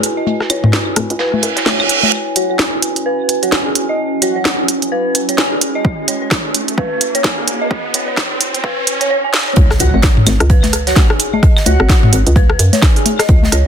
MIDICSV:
0, 0, Header, 1, 9, 480
1, 0, Start_track
1, 0, Key_signature, 4, "minor"
1, 0, Tempo, 465116
1, 275, Time_signature, 4, 2, 24, 8
1, 14107, End_track
2, 0, Start_track
2, 0, Title_t, "Synth bell"
2, 0, Program_c, 0, 98
2, 178, Note_on_c, 0, 75, 92
2, 245, Note_off_c, 0, 75, 0
2, 516, Note_on_c, 0, 73, 72
2, 581, Note_off_c, 0, 73, 0
2, 657, Note_on_c, 0, 73, 73
2, 684, Note_off_c, 0, 73, 0
2, 1236, Note_on_c, 0, 71, 95
2, 1333, Note_off_c, 0, 71, 0
2, 1618, Note_on_c, 0, 73, 70
2, 1644, Note_off_c, 0, 73, 0
2, 1716, Note_on_c, 0, 73, 97
2, 1781, Note_off_c, 0, 73, 0
2, 1857, Note_on_c, 0, 80, 73
2, 1902, Note_off_c, 0, 80, 0
2, 2097, Note_on_c, 0, 73, 72
2, 2124, Note_off_c, 0, 73, 0
2, 2435, Note_on_c, 0, 73, 72
2, 2500, Note_off_c, 0, 73, 0
2, 2578, Note_on_c, 0, 73, 73
2, 2604, Note_off_c, 0, 73, 0
2, 3155, Note_on_c, 0, 71, 97
2, 3253, Note_off_c, 0, 71, 0
2, 3537, Note_on_c, 0, 73, 68
2, 3564, Note_off_c, 0, 73, 0
2, 3635, Note_on_c, 0, 80, 78
2, 3700, Note_off_c, 0, 80, 0
2, 3778, Note_on_c, 0, 68, 71
2, 3804, Note_off_c, 0, 68, 0
2, 4017, Note_on_c, 0, 75, 94
2, 4084, Note_off_c, 0, 75, 0
2, 4355, Note_on_c, 0, 73, 76
2, 4420, Note_off_c, 0, 73, 0
2, 4498, Note_on_c, 0, 73, 74
2, 4524, Note_off_c, 0, 73, 0
2, 5075, Note_on_c, 0, 71, 99
2, 5173, Note_off_c, 0, 71, 0
2, 5457, Note_on_c, 0, 73, 73
2, 5484, Note_off_c, 0, 73, 0
2, 5554, Note_on_c, 0, 80, 79
2, 5620, Note_off_c, 0, 80, 0
2, 5696, Note_on_c, 0, 68, 74
2, 5724, Note_off_c, 0, 68, 0
2, 5936, Note_on_c, 0, 75, 97
2, 6004, Note_off_c, 0, 75, 0
2, 6274, Note_on_c, 0, 73, 74
2, 6340, Note_off_c, 0, 73, 0
2, 6417, Note_on_c, 0, 73, 78
2, 6444, Note_off_c, 0, 73, 0
2, 6994, Note_on_c, 0, 71, 100
2, 7093, Note_off_c, 0, 71, 0
2, 7377, Note_on_c, 0, 73, 74
2, 7404, Note_off_c, 0, 73, 0
2, 7474, Note_on_c, 0, 80, 79
2, 7540, Note_off_c, 0, 80, 0
2, 7618, Note_on_c, 0, 68, 76
2, 7644, Note_off_c, 0, 68, 0
2, 7857, Note_on_c, 0, 75, 96
2, 7924, Note_off_c, 0, 75, 0
2, 8195, Note_on_c, 0, 73, 76
2, 8260, Note_off_c, 0, 73, 0
2, 8337, Note_on_c, 0, 73, 80
2, 8364, Note_off_c, 0, 73, 0
2, 8915, Note_on_c, 0, 71, 104
2, 9013, Note_off_c, 0, 71, 0
2, 9297, Note_on_c, 0, 73, 74
2, 9324, Note_off_c, 0, 73, 0
2, 9395, Note_on_c, 0, 73, 101
2, 9460, Note_off_c, 0, 73, 0
2, 9538, Note_on_c, 0, 80, 77
2, 9583, Note_off_c, 0, 80, 0
2, 9779, Note_on_c, 0, 73, 78
2, 9805, Note_off_c, 0, 73, 0
2, 10116, Note_on_c, 0, 73, 78
2, 10181, Note_off_c, 0, 73, 0
2, 10258, Note_on_c, 0, 73, 78
2, 10285, Note_off_c, 0, 73, 0
2, 10835, Note_on_c, 0, 71, 100
2, 10933, Note_off_c, 0, 71, 0
2, 11217, Note_on_c, 0, 73, 71
2, 11244, Note_off_c, 0, 73, 0
2, 11315, Note_on_c, 0, 80, 81
2, 11380, Note_off_c, 0, 80, 0
2, 11458, Note_on_c, 0, 68, 78
2, 11485, Note_off_c, 0, 68, 0
2, 11698, Note_on_c, 0, 75, 104
2, 11765, Note_off_c, 0, 75, 0
2, 12035, Note_on_c, 0, 73, 77
2, 12100, Note_off_c, 0, 73, 0
2, 12178, Note_on_c, 0, 73, 77
2, 12204, Note_off_c, 0, 73, 0
2, 12754, Note_on_c, 0, 71, 106
2, 12852, Note_off_c, 0, 71, 0
2, 13137, Note_on_c, 0, 73, 74
2, 13164, Note_off_c, 0, 73, 0
2, 13233, Note_on_c, 0, 80, 83
2, 13299, Note_off_c, 0, 80, 0
2, 13376, Note_on_c, 0, 68, 77
2, 13403, Note_off_c, 0, 68, 0
2, 13617, Note_on_c, 0, 75, 101
2, 13684, Note_off_c, 0, 75, 0
2, 13955, Note_on_c, 0, 73, 76
2, 14020, Note_off_c, 0, 73, 0
2, 14107, End_track
3, 0, Start_track
3, 0, Title_t, "Ambient pad"
3, 0, Program_c, 1, 92
3, 0, Note_on_c, 1, 64, 88
3, 0, Note_on_c, 1, 66, 72
3, 0, Note_on_c, 1, 71, 87
3, 0, Note_on_c, 1, 80, 85
3, 2195, Note_on_c, 1, 61, 87
3, 9394, Note_off_c, 1, 64, 0
3, 9395, Note_off_c, 1, 61, 0
3, 9395, Note_off_c, 1, 66, 0
3, 9395, Note_off_c, 1, 71, 0
3, 9395, Note_off_c, 1, 80, 0
3, 14107, End_track
4, 0, Start_track
4, 0, Title_t, "Digital synth lead"
4, 0, Program_c, 2, 84
4, 2435, Note_on_c, 2, 66, 89
4, 2526, Note_off_c, 2, 66, 0
4, 2579, Note_on_c, 2, 66, 78
4, 2641, Note_off_c, 2, 66, 0
4, 3537, Note_on_c, 2, 66, 93
4, 3667, Note_off_c, 2, 66, 0
4, 4355, Note_on_c, 2, 66, 98
4, 4835, Note_off_c, 2, 66, 0
4, 10114, Note_on_c, 2, 66, 92
4, 10206, Note_off_c, 2, 66, 0
4, 10258, Note_on_c, 2, 66, 77
4, 10320, Note_off_c, 2, 66, 0
4, 11217, Note_on_c, 2, 66, 96
4, 11346, Note_off_c, 2, 66, 0
4, 12034, Note_on_c, 2, 66, 103
4, 12514, Note_off_c, 2, 66, 0
4, 14107, End_track
5, 0, Start_track
5, 0, Title_t, "FM bass"
5, 0, Program_c, 3, 39
5, 515, Note_on_c, 3, 37, 77
5, 628, Note_off_c, 3, 37, 0
5, 657, Note_on_c, 3, 32, 86
5, 735, Note_off_c, 3, 32, 0
5, 995, Note_on_c, 3, 32, 104
5, 1108, Note_off_c, 3, 32, 0
5, 1138, Note_on_c, 3, 37, 95
5, 1443, Note_off_c, 3, 37, 0
5, 1476, Note_on_c, 3, 42, 77
5, 1588, Note_off_c, 3, 42, 0
5, 9874, Note_on_c, 3, 37, 101
5, 10074, Note_off_c, 3, 37, 0
5, 10115, Note_on_c, 3, 37, 82
5, 10228, Note_off_c, 3, 37, 0
5, 10257, Note_on_c, 3, 32, 91
5, 10334, Note_off_c, 3, 32, 0
5, 10595, Note_on_c, 3, 32, 107
5, 10708, Note_off_c, 3, 32, 0
5, 10737, Note_on_c, 3, 37, 97
5, 11282, Note_off_c, 3, 37, 0
5, 12035, Note_on_c, 3, 37, 85
5, 12148, Note_off_c, 3, 37, 0
5, 12179, Note_on_c, 3, 32, 87
5, 12255, Note_off_c, 3, 32, 0
5, 12516, Note_on_c, 3, 32, 107
5, 12628, Note_off_c, 3, 32, 0
5, 12659, Note_on_c, 3, 37, 98
5, 12963, Note_off_c, 3, 37, 0
5, 12996, Note_on_c, 3, 42, 79
5, 13108, Note_off_c, 3, 42, 0
5, 13714, Note_on_c, 3, 37, 101
5, 13914, Note_off_c, 3, 37, 0
5, 13955, Note_on_c, 3, 37, 84
5, 14068, Note_off_c, 3, 37, 0
5, 14107, End_track
6, 0, Start_track
6, 0, Title_t, "Impact"
6, 0, Program_c, 4, 103
6, 9874, Note_on_c, 4, 60, 74
6, 11795, Note_off_c, 4, 60, 0
6, 14107, End_track
7, 0, Start_track
7, 0, Title_t, "Reverse cymbal"
7, 0, Program_c, 5, 119
7, 1235, Note_on_c, 5, 60, 71
7, 2195, Note_off_c, 5, 60, 0
7, 14107, End_track
8, 0, Start_track
8, 0, Title_t, "Riser"
8, 0, Program_c, 6, 103
8, 2194, Note_on_c, 6, 60, 79
8, 9395, Note_off_c, 6, 60, 0
8, 14107, End_track
9, 0, Start_track
9, 0, Title_t, "Drums"
9, 35, Note_on_c, 9, 42, 90
9, 41, Note_off_c, 9, 42, 0
9, 41, Note_on_c, 9, 42, 64
9, 144, Note_off_c, 9, 42, 0
9, 274, Note_on_c, 9, 63, 44
9, 278, Note_on_c, 9, 42, 85
9, 378, Note_off_c, 9, 63, 0
9, 382, Note_off_c, 9, 42, 0
9, 417, Note_on_c, 9, 37, 37
9, 419, Note_on_c, 9, 38, 51
9, 515, Note_on_c, 9, 42, 91
9, 515, Note_on_c, 9, 75, 60
9, 518, Note_off_c, 9, 42, 0
9, 518, Note_on_c, 9, 42, 60
9, 521, Note_off_c, 9, 37, 0
9, 523, Note_off_c, 9, 38, 0
9, 618, Note_off_c, 9, 75, 0
9, 621, Note_off_c, 9, 42, 0
9, 657, Note_on_c, 9, 45, 86
9, 657, Note_on_c, 9, 63, 45
9, 755, Note_on_c, 9, 38, 88
9, 757, Note_on_c, 9, 42, 89
9, 761, Note_off_c, 9, 45, 0
9, 761, Note_off_c, 9, 63, 0
9, 858, Note_off_c, 9, 38, 0
9, 861, Note_off_c, 9, 42, 0
9, 994, Note_on_c, 9, 42, 89
9, 995, Note_on_c, 9, 37, 71
9, 995, Note_on_c, 9, 63, 45
9, 1001, Note_off_c, 9, 42, 0
9, 1001, Note_on_c, 9, 42, 69
9, 1099, Note_off_c, 9, 37, 0
9, 1099, Note_off_c, 9, 63, 0
9, 1104, Note_off_c, 9, 42, 0
9, 1137, Note_on_c, 9, 42, 36
9, 1229, Note_off_c, 9, 42, 0
9, 1229, Note_on_c, 9, 38, 97
9, 1229, Note_on_c, 9, 42, 78
9, 1332, Note_off_c, 9, 42, 0
9, 1333, Note_off_c, 9, 38, 0
9, 1378, Note_on_c, 9, 63, 43
9, 1469, Note_on_c, 9, 42, 54
9, 1474, Note_off_c, 9, 42, 0
9, 1474, Note_on_c, 9, 42, 90
9, 1481, Note_off_c, 9, 63, 0
9, 1578, Note_off_c, 9, 42, 0
9, 1615, Note_on_c, 9, 38, 105
9, 1617, Note_on_c, 9, 42, 36
9, 1713, Note_off_c, 9, 38, 0
9, 1713, Note_on_c, 9, 38, 84
9, 1715, Note_on_c, 9, 37, 35
9, 1715, Note_on_c, 9, 63, 43
9, 1721, Note_off_c, 9, 42, 0
9, 1817, Note_off_c, 9, 38, 0
9, 1818, Note_off_c, 9, 37, 0
9, 1818, Note_off_c, 9, 63, 0
9, 1857, Note_on_c, 9, 75, 62
9, 1859, Note_on_c, 9, 42, 55
9, 1954, Note_off_c, 9, 42, 0
9, 1954, Note_on_c, 9, 42, 93
9, 1960, Note_off_c, 9, 75, 0
9, 1966, Note_off_c, 9, 42, 0
9, 1966, Note_on_c, 9, 42, 65
9, 2069, Note_off_c, 9, 42, 0
9, 2096, Note_on_c, 9, 63, 44
9, 2101, Note_on_c, 9, 38, 47
9, 2199, Note_off_c, 9, 63, 0
9, 2204, Note_off_c, 9, 38, 0
9, 2434, Note_on_c, 9, 42, 91
9, 2537, Note_off_c, 9, 42, 0
9, 2674, Note_on_c, 9, 38, 95
9, 2777, Note_off_c, 9, 38, 0
9, 2915, Note_on_c, 9, 42, 89
9, 3018, Note_off_c, 9, 42, 0
9, 3057, Note_on_c, 9, 42, 34
9, 3160, Note_off_c, 9, 42, 0
9, 3395, Note_on_c, 9, 42, 89
9, 3498, Note_off_c, 9, 42, 0
9, 3537, Note_on_c, 9, 42, 35
9, 3635, Note_on_c, 9, 38, 92
9, 3640, Note_off_c, 9, 42, 0
9, 3738, Note_off_c, 9, 38, 0
9, 3874, Note_on_c, 9, 42, 91
9, 3977, Note_off_c, 9, 42, 0
9, 4354, Note_on_c, 9, 42, 92
9, 4458, Note_off_c, 9, 42, 0
9, 4594, Note_on_c, 9, 38, 96
9, 4697, Note_off_c, 9, 38, 0
9, 4834, Note_on_c, 9, 42, 96
9, 4937, Note_off_c, 9, 42, 0
9, 4976, Note_on_c, 9, 42, 38
9, 5080, Note_off_c, 9, 42, 0
9, 5314, Note_on_c, 9, 42, 94
9, 5417, Note_off_c, 9, 42, 0
9, 5457, Note_on_c, 9, 42, 38
9, 5554, Note_on_c, 9, 38, 94
9, 5560, Note_off_c, 9, 42, 0
9, 5657, Note_off_c, 9, 38, 0
9, 5794, Note_on_c, 9, 42, 95
9, 5897, Note_off_c, 9, 42, 0
9, 6034, Note_on_c, 9, 36, 124
9, 6137, Note_off_c, 9, 36, 0
9, 6274, Note_on_c, 9, 42, 98
9, 6377, Note_off_c, 9, 42, 0
9, 6513, Note_on_c, 9, 36, 126
9, 6513, Note_on_c, 9, 38, 98
9, 6617, Note_off_c, 9, 36, 0
9, 6617, Note_off_c, 9, 38, 0
9, 6754, Note_on_c, 9, 42, 98
9, 6857, Note_off_c, 9, 42, 0
9, 6896, Note_on_c, 9, 42, 39
9, 6994, Note_on_c, 9, 36, 121
9, 6999, Note_off_c, 9, 42, 0
9, 7097, Note_off_c, 9, 36, 0
9, 7234, Note_on_c, 9, 42, 98
9, 7337, Note_off_c, 9, 42, 0
9, 7377, Note_on_c, 9, 42, 39
9, 7474, Note_on_c, 9, 36, 122
9, 7474, Note_on_c, 9, 38, 97
9, 7480, Note_off_c, 9, 42, 0
9, 7577, Note_off_c, 9, 36, 0
9, 7577, Note_off_c, 9, 38, 0
9, 7715, Note_on_c, 9, 42, 98
9, 7818, Note_off_c, 9, 42, 0
9, 7954, Note_on_c, 9, 36, 119
9, 8057, Note_off_c, 9, 36, 0
9, 8195, Note_on_c, 9, 42, 99
9, 8298, Note_off_c, 9, 42, 0
9, 8434, Note_on_c, 9, 36, 126
9, 8435, Note_on_c, 9, 38, 94
9, 8537, Note_off_c, 9, 36, 0
9, 8538, Note_off_c, 9, 38, 0
9, 8675, Note_on_c, 9, 42, 99
9, 8778, Note_off_c, 9, 42, 0
9, 8818, Note_on_c, 9, 42, 38
9, 8913, Note_on_c, 9, 36, 122
9, 8921, Note_off_c, 9, 42, 0
9, 9017, Note_off_c, 9, 36, 0
9, 9155, Note_on_c, 9, 42, 98
9, 9258, Note_off_c, 9, 42, 0
9, 9297, Note_on_c, 9, 42, 40
9, 9401, Note_off_c, 9, 42, 0
9, 9635, Note_on_c, 9, 38, 95
9, 9738, Note_off_c, 9, 38, 0
9, 9867, Note_on_c, 9, 42, 93
9, 9874, Note_on_c, 9, 36, 120
9, 9875, Note_on_c, 9, 63, 44
9, 9970, Note_off_c, 9, 42, 0
9, 9977, Note_off_c, 9, 36, 0
9, 9978, Note_off_c, 9, 63, 0
9, 10015, Note_on_c, 9, 38, 53
9, 10018, Note_on_c, 9, 37, 84
9, 10109, Note_on_c, 9, 42, 72
9, 10115, Note_off_c, 9, 42, 0
9, 10115, Note_on_c, 9, 42, 95
9, 10118, Note_off_c, 9, 38, 0
9, 10121, Note_off_c, 9, 37, 0
9, 10218, Note_off_c, 9, 42, 0
9, 10258, Note_on_c, 9, 63, 47
9, 10346, Note_on_c, 9, 42, 86
9, 10353, Note_on_c, 9, 38, 119
9, 10354, Note_off_c, 9, 38, 0
9, 10354, Note_on_c, 9, 36, 125
9, 10354, Note_on_c, 9, 37, 41
9, 10354, Note_on_c, 9, 38, 102
9, 10361, Note_off_c, 9, 63, 0
9, 10450, Note_off_c, 9, 42, 0
9, 10457, Note_off_c, 9, 36, 0
9, 10457, Note_off_c, 9, 38, 0
9, 10458, Note_off_c, 9, 37, 0
9, 10496, Note_on_c, 9, 45, 99
9, 10591, Note_on_c, 9, 42, 67
9, 10594, Note_off_c, 9, 42, 0
9, 10594, Note_on_c, 9, 42, 96
9, 10594, Note_on_c, 9, 63, 46
9, 10594, Note_on_c, 9, 75, 66
9, 10598, Note_on_c, 9, 38, 48
9, 10600, Note_off_c, 9, 45, 0
9, 10698, Note_off_c, 9, 42, 0
9, 10698, Note_off_c, 9, 63, 0
9, 10698, Note_off_c, 9, 75, 0
9, 10701, Note_off_c, 9, 38, 0
9, 10736, Note_on_c, 9, 37, 85
9, 10737, Note_on_c, 9, 42, 38
9, 10833, Note_off_c, 9, 42, 0
9, 10833, Note_on_c, 9, 42, 91
9, 10834, Note_on_c, 9, 36, 120
9, 10840, Note_off_c, 9, 37, 0
9, 10936, Note_off_c, 9, 42, 0
9, 10937, Note_off_c, 9, 36, 0
9, 10969, Note_on_c, 9, 38, 57
9, 10977, Note_on_c, 9, 42, 30
9, 10977, Note_on_c, 9, 63, 45
9, 11072, Note_off_c, 9, 38, 0
9, 11072, Note_off_c, 9, 42, 0
9, 11072, Note_on_c, 9, 42, 68
9, 11074, Note_on_c, 9, 37, 41
9, 11075, Note_off_c, 9, 42, 0
9, 11075, Note_on_c, 9, 42, 91
9, 11080, Note_off_c, 9, 63, 0
9, 11177, Note_off_c, 9, 37, 0
9, 11178, Note_off_c, 9, 42, 0
9, 11218, Note_on_c, 9, 38, 45
9, 11218, Note_on_c, 9, 42, 38
9, 11311, Note_off_c, 9, 42, 0
9, 11311, Note_on_c, 9, 42, 89
9, 11312, Note_off_c, 9, 38, 0
9, 11312, Note_on_c, 9, 38, 121
9, 11314, Note_on_c, 9, 36, 117
9, 11314, Note_on_c, 9, 63, 45
9, 11315, Note_off_c, 9, 38, 0
9, 11315, Note_on_c, 9, 38, 97
9, 11414, Note_off_c, 9, 42, 0
9, 11417, Note_off_c, 9, 36, 0
9, 11417, Note_off_c, 9, 63, 0
9, 11419, Note_off_c, 9, 38, 0
9, 11456, Note_on_c, 9, 37, 87
9, 11552, Note_on_c, 9, 42, 76
9, 11555, Note_off_c, 9, 42, 0
9, 11555, Note_on_c, 9, 42, 97
9, 11560, Note_off_c, 9, 37, 0
9, 11658, Note_off_c, 9, 42, 0
9, 11696, Note_on_c, 9, 63, 45
9, 11793, Note_on_c, 9, 37, 40
9, 11794, Note_on_c, 9, 36, 120
9, 11795, Note_on_c, 9, 42, 97
9, 11799, Note_off_c, 9, 63, 0
9, 11896, Note_off_c, 9, 37, 0
9, 11897, Note_off_c, 9, 36, 0
9, 11898, Note_off_c, 9, 42, 0
9, 11935, Note_on_c, 9, 75, 63
9, 11938, Note_on_c, 9, 38, 50
9, 12033, Note_on_c, 9, 42, 66
9, 12034, Note_on_c, 9, 63, 47
9, 12036, Note_off_c, 9, 42, 0
9, 12036, Note_on_c, 9, 42, 101
9, 12039, Note_off_c, 9, 75, 0
9, 12041, Note_off_c, 9, 38, 0
9, 12137, Note_off_c, 9, 63, 0
9, 12139, Note_off_c, 9, 42, 0
9, 12176, Note_on_c, 9, 37, 80
9, 12274, Note_on_c, 9, 36, 126
9, 12276, Note_on_c, 9, 38, 103
9, 12278, Note_on_c, 9, 42, 91
9, 12279, Note_off_c, 9, 37, 0
9, 12281, Note_off_c, 9, 38, 0
9, 12281, Note_on_c, 9, 38, 115
9, 12377, Note_off_c, 9, 36, 0
9, 12381, Note_off_c, 9, 42, 0
9, 12384, Note_off_c, 9, 38, 0
9, 12417, Note_on_c, 9, 45, 101
9, 12417, Note_on_c, 9, 63, 48
9, 12515, Note_on_c, 9, 42, 97
9, 12516, Note_off_c, 9, 42, 0
9, 12516, Note_on_c, 9, 42, 68
9, 12520, Note_off_c, 9, 45, 0
9, 12520, Note_off_c, 9, 63, 0
9, 12620, Note_off_c, 9, 42, 0
9, 12658, Note_on_c, 9, 42, 39
9, 12753, Note_on_c, 9, 63, 49
9, 12754, Note_off_c, 9, 42, 0
9, 12754, Note_on_c, 9, 36, 117
9, 12754, Note_on_c, 9, 42, 88
9, 12856, Note_off_c, 9, 63, 0
9, 12857, Note_off_c, 9, 36, 0
9, 12857, Note_off_c, 9, 42, 0
9, 12896, Note_on_c, 9, 37, 83
9, 12996, Note_on_c, 9, 42, 98
9, 12999, Note_off_c, 9, 37, 0
9, 13002, Note_off_c, 9, 42, 0
9, 13002, Note_on_c, 9, 42, 72
9, 13105, Note_off_c, 9, 42, 0
9, 13136, Note_on_c, 9, 63, 48
9, 13138, Note_on_c, 9, 42, 44
9, 13141, Note_on_c, 9, 38, 39
9, 13234, Note_on_c, 9, 36, 124
9, 13234, Note_on_c, 9, 37, 39
9, 13234, Note_on_c, 9, 75, 62
9, 13235, Note_off_c, 9, 38, 0
9, 13235, Note_on_c, 9, 38, 97
9, 13238, Note_off_c, 9, 38, 0
9, 13238, Note_on_c, 9, 38, 111
9, 13239, Note_off_c, 9, 63, 0
9, 13241, Note_off_c, 9, 42, 0
9, 13241, Note_on_c, 9, 42, 85
9, 13337, Note_off_c, 9, 36, 0
9, 13337, Note_off_c, 9, 37, 0
9, 13337, Note_off_c, 9, 75, 0
9, 13342, Note_off_c, 9, 38, 0
9, 13344, Note_off_c, 9, 42, 0
9, 13378, Note_on_c, 9, 42, 31
9, 13474, Note_on_c, 9, 63, 45
9, 13475, Note_off_c, 9, 42, 0
9, 13475, Note_on_c, 9, 42, 97
9, 13487, Note_off_c, 9, 42, 0
9, 13487, Note_on_c, 9, 42, 70
9, 13577, Note_off_c, 9, 63, 0
9, 13590, Note_off_c, 9, 42, 0
9, 13612, Note_on_c, 9, 38, 48
9, 13616, Note_on_c, 9, 37, 80
9, 13618, Note_on_c, 9, 42, 50
9, 13712, Note_off_c, 9, 42, 0
9, 13712, Note_on_c, 9, 42, 93
9, 13714, Note_on_c, 9, 36, 126
9, 13715, Note_off_c, 9, 38, 0
9, 13719, Note_off_c, 9, 37, 0
9, 13815, Note_off_c, 9, 42, 0
9, 13817, Note_off_c, 9, 36, 0
9, 13857, Note_on_c, 9, 63, 47
9, 13866, Note_on_c, 9, 38, 54
9, 13954, Note_on_c, 9, 37, 39
9, 13956, Note_on_c, 9, 42, 100
9, 13959, Note_off_c, 9, 42, 0
9, 13959, Note_on_c, 9, 42, 67
9, 13960, Note_off_c, 9, 63, 0
9, 13969, Note_off_c, 9, 38, 0
9, 14057, Note_off_c, 9, 37, 0
9, 14062, Note_off_c, 9, 42, 0
9, 14107, End_track
0, 0, End_of_file